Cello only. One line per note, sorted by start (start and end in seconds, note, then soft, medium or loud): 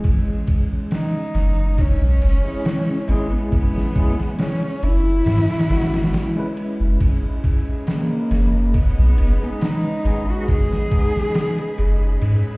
0.94 1.82 D#4 medium
1.80 3.12 C#4 medium
3.10 3.52 B3 medium
3.53 4.36 B3 loud
4.40 4.85 C#4 medium
4.84 6.57 E4 loud
7.89 8.77 A#3 medium
8.76 9.64 B3 medium
9.63 10.31 D#4 loud
10.29 10.49 F#4 medium
10.50 12.19 G#4 loud